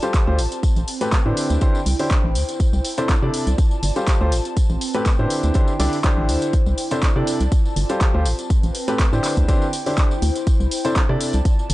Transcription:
Already playing: F4 A5
0.00 G3 F4 G4 A4 C5, closed hi-hat, tambourine
0.14 kick, clap, closed hi-hat, tambourine
0.27 D2 F4 G4 A4 C5
0.38 A1 C4, open hi-hat, tambourine
0.52 closed hi-hat, tambourine
0.63 kick, closed hi-hat, tambourine
0.76 A1, closed hi-hat, tambourine
0.83 B4 G5
0.88 open hi-hat, tambourine
1.01 A2 C4 G4 A4 B4, closed hi-hat, tambourine
1.12 kick, clap, closed hi-hat, tambourine
1.26 A2 D3 D4 E4 G4 C5
1.37 E4, open hi-hat, tambourine
1.50 D2, closed hi-hat, tambourine
1.61 D3 D4 E4 G4 C5, kick, closed hi-hat, tambourine
1.75 tambourine
1.86 C2 C5, open hi-hat, tambourine
1.99 D3 D4 E4 G4 C5, open hi-hat, tambourine
2.11 kick, clap, closed hi-hat, tambourine
2.24 A1
2.35 D2, open hi-hat, tambourine
2.49 closed hi-hat, tambourine
2.60 kick, closed hi-hat, tambourine
2.73 C2, tambourine
2.83 A5, open hi-hat, tambourine
2.98 C3 D4 E4 A4 C5 D5, closed hi-hat, tambourine
3.09 kick, clap, closed hi-hat, tambourine
3.22 C3 D4 E4 A4 D5
3.34 open hi-hat, tambourine
3.47 C2, closed hi-hat, tambourine
3.58 F4, kick, closed hi-hat, tambourine
3.71 tambourine
3.83 G1, open hi-hat, tambourine
3.92 G3 F4 G4 A4 C5, closed hi-hat
3.97 tambourine
4.07 kick, clap, closed hi-hat, tambourine
4.21 D2 F4 G4 A4 C5
4.32 A1 C4, open hi-hat, tambourine
4.45 closed hi-hat, tambourine
4.57 kick, closed hi-hat, tambourine
4.70 A1, tambourine
4.77 B4 G5
4.81 open hi-hat, tambourine
4.94 A2 C4 G4 A4 B4, closed hi-hat, tambourine
5.05 kick, clap, closed hi-hat, tambourine
5.19 A2 D3 D4 E4 G4 C5
5.30 E4, open hi-hat, tambourine
5.43 D2, closed hi-hat, tambourine
5.54 D3 D4 E4 G4 C5, kick, closed hi-hat, tambourine
5.68 tambourine
5.80 C2 D3 D4 E4 G4 D5, open hi-hat, tambourine
5.86 C5
5.93 open hi-hat, tambourine
6.03 D3 D4 E4 G4 C5, kick, clap, closed hi-hat, tambourine
6.17 A1
6.29 D2, open hi-hat, tambourine
6.42 closed hi-hat, tambourine
6.53 kick, closed hi-hat, tambourine
6.66 C2, tambourine
6.78 D5, open hi-hat, tambourine
6.91 C3 D4 E4 A4 C5, closed hi-hat, tambourine
6.98 A5
7.03 kick, clap, closed hi-hat, tambourine
7.16 C3 D4 E4 A4 D5
7.27 open hi-hat, tambourine
7.40 C2, closed hi-hat, tambourine
7.52 F4, kick, closed hi-hat, tambourine
7.65 tambourine
7.76 G1, open hi-hat, tambourine
7.86 G3 F4 G4 A4 C5, closed hi-hat, tambourine
8.01 kick, clap, closed hi-hat, tambourine
8.14 D2 F4 G4 A4 C5
8.26 A1 C4, open hi-hat, tambourine
8.39 closed hi-hat, tambourine
8.49 B4, kick, closed hi-hat, tambourine
8.63 A1, closed hi-hat, tambourine
8.70 G5
8.75 open hi-hat, tambourine
8.88 A2 C4 G4 A4 B4, closed hi-hat, tambourine
8.99 kick, clap, closed hi-hat, tambourine
9.13 A2 D3 D4 E4 G4 C5, tambourine
9.23 E4, clap, open hi-hat, tambourine
9.37 D2, kick, closed hi-hat, tambourine
9.48 D3 D4 E4 G4 C5, kick, closed hi-hat, tambourine
9.62 tambourine
9.73 open hi-hat, tambourine
9.80 C5
9.86 D3 D4 E4 G4 C5, open hi-hat, tambourine
9.97 kick, clap, closed hi-hat, tambourine
10.11 tambourine
10.22 D2, open hi-hat, tambourine
10.36 closed hi-hat, tambourine
10.47 kick, closed hi-hat, tambourine
10.60 C2, tambourine
10.71 D5, open hi-hat, tambourine
10.85 C3 D4 E4 A4 C5, closed hi-hat, tambourine
10.91 A5
10.96 kick, clap, closed hi-hat, tambourine
11.09 C3 D4 E4 A4 D5, cross-stick
11.21 open hi-hat, tambourine
11.33 C2, closed hi-hat, tambourine
11.45 F4, kick, closed hi-hat, tambourine
11.59 tambourine
11.70 G1, open hi-hat, tambourine

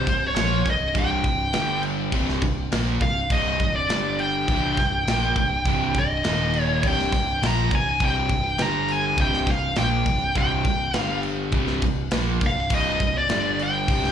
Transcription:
Already playing: C5
0.06 C1 C2 G2, kick, crash
0.27 C#5
0.36 A#1 A#2 F3 A#3, snare, crash
0.65 C1 C2 G2, kick, crash
0.70 D#5
0.94 C1 C2 G2 C3, kick, crash
0.98 G5
1.24 C1 C2 G2, kick, crash
1.53 G1 G2 D3 G3, snare, crash
1.83 crash
2.12 C1 C2 G2 C3, kick, crash
2.29 snare
2.42 C1 C2 G2, kick, crash
2.72 A#1 A#2 F3 A#3, snare, crash
3.00 C1 C2 G2 F5, kick, crash
3.30 C1 C2 G2 C3 D#5, kick, crash
3.60 C1 C2 G2, kick, crash
3.76 D5
3.88 G1 G2 D3 G3, snare, crash
4.19 G5, crash
4.48 C1 C2 G2 C3, kick, crash
4.77 C1 C2 G2, kick, snare, crash
5.07 A#1 A#2 F3 A#3, snare, crash
5.36 C1 C2 G2, kick, crash
5.65 C1 C2 G2 C3, kick, crash
5.95 C1 C2 G2, kick, crash
5.99 D#5
6.24 D#1 D#2 A#2 D#3, snare, crash
6.53 crash
6.63 C#5
6.83 C1 C2 G2 C3, kick, crash
6.87 G5
6.99 snare
7.12 C1 C2 G2, kick, snare, crash
7.42 A#1 A#2 F3 A#3, snare, crash
7.46 A#5
7.71 C1 C2 G2 G#5, kick, crash
8.00 C1 C2 G2 C3, kick, crash
8.05 G5
8.29 C1 C2 G2, kick, crash
8.58 G1 G2 D3 G3 A#5, snare, crash
8.88 G#5, crash
9.17 C1 C2 G2 C3 G5, kick, crash
9.34 snare
9.46 C1 C2 G2, kick, snare, crash
9.51 F5
9.76 A#1 A#2 F3 A#3 G5, snare, crash
10.06 C1 C2 G2, kick, crash
10.35 C1 C2 G2 C3 G5, kick, crash
10.64 C1 C2 G2, kick, crash
10.93 G1 G2 D3 G3, snare, crash
10.98 F5
11.23 crash
11.52 C1 C2 G2 C3, kick, crash
11.67 snare
11.82 C1 C2 G2, kick, crash
12.11 A#1 A#2 F3 A#3, snare, crash
12.41 C1 C2 G2, kick, crash
12.47 F5
12.70 C1 C2 G2 C3, kick, crash
12.75 D#5
13.00 C1 C2 G2, kick, crash
13.18 D5
13.29 G1 G2 D3 G3, snare, crash
13.59 G5, crash
13.88 C1 C2 G2 C3, kick, crash
14.04 snare

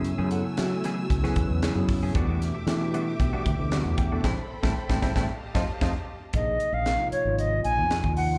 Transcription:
Already playing: F#2 C#3 F#3 A3 B3 E4 G#4 E5 G#5 E6
0.04 closed hi-hat
0.18 F#2 E3 A3 C#4 G#4
0.31 C#3 F#3 B3 E4 A4 F#5, closed hi-hat
0.44 muted clean electric guitar stroke
0.57 F#3 E5, snare, closed hi-hat
0.71 muted clean electric guitar stroke
0.84 C#3 E3 F#3 A3 B3 C#4 E4 F#4 G#4, snare, closed hi-hat
0.98 muted clean electric guitar stroke
1.10 C#2, muted clean electric guitar stroke, kick, closed hi-hat
1.23 C#3 E3 F#3 A3 B3 C#4 E4 G#4 B4, snare
1.36 E2, kick, closed hi-hat
1.50 E2
1.62 E3 A3 C#4 G#4, snare, closed hi-hat
1.75 F#2 C#3 F#3 B3 E4 G#4, muted clean electric guitar stroke
1.89 muted clean electric guitar stroke, kick, snare, open hi-hat
2.03 A3 C#4 G#4
2.14 E2 B2 E3 G3 A3 B3 D4 F#4 G4 E5 D6, kick, closed hi-hat
2.27 E2 G3 B3 D4 F#4
2.41 muted clean electric guitar stroke, snare, closed hi-hat
2.55 muted clean electric guitar stroke
2.67 B2 E3 A3 D4 G4, snare, closed hi-hat
2.81 muted clean electric guitar stroke
2.94 G3 B3 D4 F#4, closed hi-hat
3.07 muted clean electric guitar stroke
3.19 B1 B2 E3 A3 D4 G4 G5, muted clean electric guitar stroke, kick, closed hi-hat
3.33 G3 B3 D4 F#4
3.45 D2, muted clean electric guitar stroke, kick, closed hi-hat
3.59 D2 B2 E3 A3 D4 G4
3.72 G3 B3 D4 F#4 F#5, snare, closed hi-hat
3.85 E2, muted clean electric guitar stroke
3.97 G5, muted clean electric guitar stroke, kick, closed hi-hat
4.11 B2 E3 A3 B3 D4 F#4 A4
4.24 A1 G3 A3 C4 E4 A4 C5 E5 G5 A5 B5, kick, snare
4.63 A1 G3 A3 C4 E4 E5 G5 A5, kick, snare
4.89 A1 G3 A3 C4 E4 E5 G5 A5, kick, snare
5.02 A1 G3 A3 C4 E4 E5 G5 A5, kick, snare
5.15 A1 G3 A3 C4 E4 E5 G5 A5, kick, snare
5.28 G4 D#5 F5 A5
5.55 F2 F3 A3 C4 D#4 F4 D#5 F5 A5, kick, snare
5.81 F2 F3 A3 C4 D#4 F4 D#5 F5 A5, kick, snare
6.33 A#1 C3 F3 A#3 D#4 G#4 D#5, kick, closed hi-hat
6.60 closed hi-hat
6.72 A#1 F5
6.86 C3 F3 A#3 D#4 A#4, snare, closed hi-hat
7.00 C3 F3 A#3 D#4 F4
7.12 C#5, muted fretless electric bass stroke, closed hi-hat
7.25 G#1 C3 F3 A#3 D#4 F4
7.38 D#5, closed hi-hat
7.64 A#1 G#5, closed hi-hat
7.78 F2
7.91 snare, closed hi-hat
8.04 D#2 C3 F3 A#3 D#4 F4, kick
8.17 C3 F3 A#3 D#4 F4 F#5, open hi-hat

